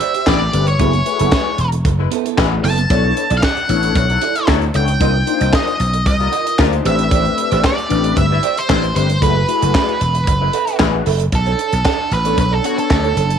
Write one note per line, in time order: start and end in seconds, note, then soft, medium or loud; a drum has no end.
0.00 0.14 G4 medium
0.00 0.13 C5 medium
0.00 0.14 D5 medium
0.00 0.29 E5 loud
0.00 closed hi-hat medium
0.14 0.25 G4 soft
0.14 0.26 C5 medium
0.14 0.26 E5 medium
0.14 closed hi-hat medium
0.26 0.48 A1 loud
0.26 0.44 G3 loud
0.26 0.38 A3 medium
0.26 0.44 B3 loud
0.26 0.39 C4 medium
0.26 0.39 D4 medium
0.26 0.44 E4 loud
0.26 0.39 G4 medium
0.26 0.44 B4 loud
0.26 0.39 B4 medium
0.26 0.68 D5 medium
0.26 kick loud
0.26 snare loud
0.26 clap medium
0.40 muted clean electric guitar stroke medium
0.52 0.75 G1 loud
0.52 0.65 A3 medium
0.52 0.65 C4 medium
0.52 0.65 D4 medium
0.52 0.65 G4 medium
0.52 0.65 B4 loud
0.52 closed hi-hat medium
0.67 1.69 C#5 medium
0.67 muted clean electric guitar stroke soft
0.67 closed hi-hat medium
0.79 1.01 F#1 loud
0.79 0.91 A3 medium
0.79 0.96 B3 medium
0.79 0.91 E4 medium
0.79 0.93 E4 loud
0.79 0.91 F#4 medium
0.79 0.92 G#4 medium
0.79 0.92 A4 medium
0.79 0.92 B4 medium
0.79 kick loud
0.79 closed hi-hat medium
0.93 muted clean electric guitar stroke soft
0.93 closed hi-hat soft
1.05 1.50 A3 medium
1.05 1.51 E4 medium
1.05 1.51 F#4 medium
1.05 1.51 G#4 medium
1.05 1.51 B4 medium
1.05 muted clean electric guitar stroke soft
1.05 closed hi-hat medium
1.19 1.30 F#1 loud
1.19 1.31 B3 medium
1.19 1.31 E4 medium
1.19 1.32 A4 medium
1.19 closed hi-hat medium
1.32 muted clean electric guitar stroke soft
1.32 kick loud
1.32 snare loud
1.32 clap loud
1.46 muted clean electric guitar stroke medium
1.58 1.80 E1 loud
1.58 closed hi-hat medium
1.72 muted clean electric guitar stroke soft
1.72 closed hi-hat soft
1.85 2.06 F#1 medium
1.85 muted clean electric guitar stroke soft
1.85 kick loud
1.85 closed hi-hat loud
1.99 2.10 G#3 medium
1.99 2.10 B3 medium
1.99 2.09 E4 medium
1.99 2.10 B4 medium
1.99 muted clean electric guitar stroke soft
2.11 2.25 B3 medium
2.11 2.24 E4 loud
2.11 2.24 A4 loud
2.11 closed hi-hat medium
2.25 2.36 B3 medium
2.25 2.37 E4 medium
2.25 2.37 A4 medium
2.25 closed hi-hat medium
2.37 2.59 A1 loud
2.37 2.54 G#3 loud
2.37 2.60 A3 medium
2.37 2.54 B3 loud
2.37 2.60 E4 medium
2.37 2.54 E4 loud
2.37 2.60 F#4 medium
2.37 2.60 G#4 medium
2.37 2.54 B4 loud
2.37 2.60 B4 medium
2.37 kick loud
2.37 snare loud
2.37 clap medium
2.51 muted clean electric guitar stroke medium
2.64 2.85 F#1 loud
2.64 2.81 B3 medium
2.64 2.77 E4 medium
2.64 2.76 A4 loud
2.64 3.39 A5 loud
2.64 open hi-hat medium
2.78 muted clean electric guitar stroke soft
2.78 closed hi-hat medium
2.90 3.11 B1 loud
2.90 3.24 B3 medium
2.90 3.24 D4 medium
2.90 3.07 E4 medium
2.90 3.24 E4 medium
2.90 3.24 A4 medium
2.90 3.04 A4 medium
2.90 3.24 C#5 medium
2.90 3.03 D5 loud
2.90 kick loud
2.90 closed hi-hat medium
3.04 muted clean electric guitar stroke soft
3.16 muted clean electric guitar stroke soft
3.16 closed hi-hat medium
3.30 3.41 B1 loud
3.30 3.41 E4 medium
3.30 3.42 A4 medium
3.30 3.42 D5 medium
3.30 closed hi-hat medium
3.37 3.44 F5 medium
3.42 3.96 F#5 loud
3.42 muted clean electric guitar stroke soft
3.42 kick loud
3.42 snare loud
3.42 clap loud
3.56 muted clean electric guitar stroke medium
3.56 closed hi-hat soft
3.69 3.90 A1 loud
3.69 4.03 B3 medium
3.69 4.03 D4 medium
3.69 4.03 E4 medium
3.69 4.03 A4 medium
3.69 4.03 C#5 loud
3.69 closed hi-hat medium
3.83 muted clean electric guitar stroke soft
3.83 closed hi-hat medium
3.95 4.17 B1 loud
3.95 4.45 F#5 medium
3.95 muted clean electric guitar stroke soft
3.95 kick loud
3.95 closed hi-hat loud
4.09 4.20 F#3 medium
4.09 4.20 A3 medium
4.09 4.20 E4 medium
4.09 4.20 A4 medium
4.09 muted clean electric guitar stroke soft
4.09 closed hi-hat soft
4.21 4.36 E4 medium
4.21 4.35 A4 medium
4.21 4.35 D5 loud
4.21 closed hi-hat medium
4.36 4.47 E4 medium
4.36 4.47 A4 medium
4.36 4.48 E5 medium
4.36 closed hi-hat medium
4.48 4.69 D2 loud
4.48 4.65 F#3 loud
4.48 4.65 A3 medium
4.48 4.60 B3 medium
4.48 4.60 D4 medium
4.48 4.60 E4 medium
4.48 4.65 E4 loud
4.48 4.60 A4 medium
4.48 4.65 A4 loud
4.48 4.60 C#5 medium
4.48 muted clean electric guitar stroke soft
4.48 kick loud
4.48 snare loud
4.48 clap medium
4.62 muted clean electric guitar stroke medium
4.62 closed hi-hat soft
4.74 4.96 C#2 loud
4.74 4.86 B3 medium
4.74 4.86 D4 medium
4.74 4.86 E4 medium
4.74 4.86 A4 medium
4.74 4.86 C#5 loud
4.74 5.57 G5 loud
4.74 closed hi-hat medium
4.88 muted clean electric guitar stroke soft
4.88 closed hi-hat medium
5.00 5.22 C2 loud
5.00 5.12 A#3 medium
5.00 5.12 D4 medium
5.00 5.12 D#4 medium
5.00 5.12 F4 medium
5.00 5.18 F4 medium
5.00 5.14 A#4 medium
5.00 5.13 C5 medium
5.00 5.13 D#5 loud
5.00 kick loud
5.00 closed hi-hat loud
5.14 muted clean electric guitar stroke soft
5.27 5.72 A#3 medium
5.27 5.72 D4 medium
5.27 5.72 D#4 medium
5.27 5.72 F4 medium
5.27 5.72 C5 medium
5.27 muted clean electric guitar stroke soft
5.27 closed hi-hat medium
5.40 5.51 C2 loud
5.40 5.52 F4 soft
5.40 5.52 A#4 medium
5.40 5.53 D#5 medium
5.40 closed hi-hat medium
5.53 6.06 D#5 medium
5.53 muted clean electric guitar stroke soft
5.53 kick loud
5.53 snare loud
5.53 clap medium
5.67 muted clean electric guitar stroke soft
5.67 closed hi-hat soft
5.80 6.01 B1 medium
5.80 closed hi-hat medium
5.93 muted clean electric guitar stroke medium
5.93 closed hi-hat medium
6.05 6.27 C2 medium
6.05 6.56 D#5 medium
6.05 muted clean electric guitar stroke soft
6.05 kick loud
6.05 closed hi-hat medium
6.20 6.31 G3 medium
6.20 6.31 A#3 medium
6.20 6.31 F4 medium
6.20 6.31 A#4 loud
6.20 muted clean electric guitar stroke medium
6.20 closed hi-hat soft
6.32 6.46 F4 loud
6.32 6.45 A#4 medium
6.32 6.44 D#5 loud
6.32 closed hi-hat medium
6.46 6.57 F4 medium
6.46 6.58 A#4 medium
6.46 6.58 D#5 medium
6.46 closed hi-hat medium
6.58 6.80 D2 loud
6.58 6.76 G3 loud
6.58 6.81 A#3 medium
6.58 6.76 A#3 loud
6.58 6.81 D4 medium
6.58 6.81 D#4 medium
6.58 6.81 F4 medium
6.58 6.76 F4 loud
6.58 6.76 A#4 loud
6.58 6.81 C5 medium
6.58 muted clean electric guitar stroke soft
6.58 kick loud
6.58 snare loud
6.58 clap medium
6.72 muted clean electric guitar stroke soft
6.72 closed hi-hat soft
6.85 7.27 A1 loud
6.85 7.69 A3 medium
6.85 7.70 C4 medium
6.85 7.70 D4 medium
6.85 7.02 G4 medium
6.85 7.70 G4 medium
6.85 7.70 B4 medium
6.85 6.99 C5 medium
6.85 6.98 D5 medium
6.85 7.65 E5 loud
6.85 closed hi-hat medium
6.99 muted clean electric guitar stroke soft
6.99 closed hi-hat medium
7.11 7.28 G4 medium
7.11 7.25 C5 medium
7.11 7.24 D5 medium
7.11 kick loud
7.11 closed hi-hat loud
7.25 muted clean electric guitar stroke soft
7.25 closed hi-hat soft
7.37 muted clean electric guitar stroke soft
7.37 closed hi-hat medium
7.51 7.62 A1 medium
7.51 7.62 G4 medium
7.51 7.63 C5 medium
7.51 7.63 D5 medium
7.51 closed hi-hat medium
7.63 8.17 D5 loud
7.63 muted clean electric guitar stroke soft
7.63 kick loud
7.63 snare loud
7.63 clap medium
7.77 muted clean electric guitar stroke soft
7.77 closed hi-hat soft
7.89 8.12 A1 medium
7.89 8.24 A3 medium
7.89 8.24 C4 medium
7.89 8.24 D4 medium
7.89 8.24 G4 medium
7.89 8.24 B4 medium
7.89 closed hi-hat medium
8.04 muted clean electric guitar stroke soft
8.04 closed hi-hat medium
8.16 8.38 G1 medium
8.16 8.59 E5 loud
8.16 muted clean electric guitar stroke soft
8.16 kick loud
8.16 closed hi-hat medium
8.30 8.41 G3 medium
8.30 8.41 B3 medium
8.30 8.42 E4 medium
8.30 8.41 B4 medium
8.30 muted clean electric guitar stroke soft
8.43 8.57 G4 medium
8.43 8.56 C5 medium
8.43 8.56 D5 medium
8.43 closed hi-hat medium
8.57 8.68 G4 medium
8.57 8.95 C5 loud
8.57 8.69 E5 medium
8.57 closed hi-hat medium
8.68 8.91 A1 loud
8.68 8.86 G3 loud
8.68 8.81 A3 medium
8.68 8.81 C4 medium
8.68 8.86 C4 loud
8.68 8.81 D4 medium
8.68 8.86 E4 loud
8.68 8.81 G4 medium
8.68 8.81 B4 medium
8.68 8.86 C5 loud
8.68 muted clean electric guitar stroke soft
8.68 kick loud
8.68 snare loud
8.68 clap medium
8.83 muted clean electric guitar stroke soft
8.83 closed hi-hat soft
8.95 9.17 G1 loud
8.95 9.07 A3 medium
8.95 9.07 C4 medium
8.95 9.07 D4 medium
8.95 9.07 G4 medium
8.95 9.07 B4 medium
8.95 9.23 C5 medium
8.95 closed hi-hat medium
9.09 muted clean electric guitar stroke soft
9.09 closed hi-hat medium
9.21 9.43 F#1 loud
9.21 9.33 A3 medium
9.21 9.33 E4 medium
9.21 9.34 F#4 medium
9.21 9.34 G#4 medium
9.21 9.39 A4 medium
9.21 9.34 B4 medium
9.21 9.35 B4 medium
9.21 10.77 B4 medium
9.21 9.34 E5 medium
9.21 kick loud
9.21 closed hi-hat medium
9.35 muted clean electric guitar stroke soft
9.48 9.93 A3 medium
9.48 9.93 E4 medium
9.48 9.93 F#4 medium
9.48 9.93 G#4 medium
9.48 9.93 B4 medium
9.48 muted clean electric guitar stroke soft
9.48 closed hi-hat medium
9.62 9.72 F#1 loud
9.62 9.73 A4 medium
9.62 9.73 B4 medium
9.62 9.74 E5 medium
9.62 closed hi-hat medium
9.74 muted clean electric guitar stroke soft
9.74 kick loud
9.74 snare loud
9.74 clap loud
9.88 muted clean electric guitar stroke medium
9.88 closed hi-hat soft
10.01 10.22 E1 loud
10.01 closed hi-hat medium
10.15 muted clean electric guitar stroke soft
10.15 closed hi-hat medium
10.27 10.48 F#1 medium
10.27 muted clean electric guitar stroke soft
10.27 kick loud
10.27 closed hi-hat loud
10.41 10.52 G#3 medium
10.41 10.52 B3 medium
10.41 10.52 E4 medium
10.41 10.52 B4 loud
10.41 muted clean electric guitar stroke medium
10.53 10.68 A4 medium
10.53 10.67 B4 medium
10.53 10.66 E5 loud
10.53 closed hi-hat medium
10.67 10.79 A4 soft
10.67 10.80 B4 medium
10.67 10.79 E5 medium
10.67 closed hi-hat medium
10.79 11.01 A1 medium
10.79 10.96 G#3 loud
10.79 11.02 A3 medium
10.79 10.96 B3 loud
10.79 10.96 E4 loud
10.79 11.02 E4 medium
10.79 11.02 F#4 medium
10.79 11.02 G#4 medium
10.79 10.96 B4 loud
10.79 11.02 B4 loud
10.79 kick loud
10.79 snare loud
10.79 clap medium
10.94 muted clean electric guitar stroke medium
11.06 11.28 F#1 loud
11.06 11.23 A4 medium
11.06 11.20 B4 medium
11.06 11.19 E5 loud
11.06 open hi-hat medium
11.20 muted clean electric guitar stroke soft
11.20 closed hi-hat medium
11.32 11.54 B1 loud
11.32 12.15 A4 medium
11.32 muted clean electric guitar stroke soft
11.32 kick loud
11.32 closed hi-hat medium
11.46 11.58 D4 medium
11.46 11.58 A4 medium
11.46 11.59 C#5 medium
11.46 closed hi-hat soft
11.59 11.72 D4 medium
11.59 11.72 A4 medium
11.59 11.71 C#5 medium
11.59 closed hi-hat medium
11.73 11.83 B1 medium
11.73 muted clean electric guitar stroke soft
11.73 closed hi-hat medium
11.85 12.02 D4 medium
11.85 11.99 A4 medium
11.85 11.98 C#5 medium
11.85 kick loud
11.85 snare loud
11.85 clap medium
11.99 muted clean electric guitar stroke soft
12.11 12.33 A1 medium
12.11 12.38 B4 loud
12.11 muted clean electric guitar stroke soft
12.11 closed hi-hat medium
12.25 12.41 B3 medium
12.25 12.41 D4 medium
12.25 12.37 D4 medium
12.25 12.42 A4 medium
12.25 12.37 A4 medium
12.25 12.37 C#5 medium
12.25 12.42 C#5 medium
12.25 closed hi-hat medium
12.38 12.59 B1 medium
12.38 12.53 B4 loud
12.38 muted clean electric guitar stroke soft
12.38 kick loud
12.38 closed hi-hat loud
12.51 12.62 D4 medium
12.51 12.63 A4 medium
12.51 12.65 A4 medium
12.51 12.64 C#5 medium
12.63 13.09 B3 medium
12.63 13.09 D4 medium
12.63 12.77 D4 medium
12.63 12.79 F#4 medium
12.63 13.09 A4 medium
12.63 12.77 A4 medium
12.63 13.09 C#5 medium
12.63 12.77 C#5 medium
12.63 closed hi-hat medium
12.78 13.39 A4 medium
12.78 muted clean electric guitar stroke soft
12.78 closed hi-hat medium
12.90 13.12 D2 loud
12.90 muted clean electric guitar stroke soft
12.90 kick loud
12.90 snare loud
12.90 clap medium
13.04 13.15 D4 soft
13.04 13.16 A4 medium
13.04 13.16 C#5 medium
13.04 closed hi-hat soft
13.16 13.38 F#1 medium
13.16 13.33 D4 medium
13.16 13.30 A4 medium
13.16 13.29 C#5 loud
13.16 closed hi-hat medium
13.30 muted clean electric guitar stroke soft
13.30 closed hi-hat medium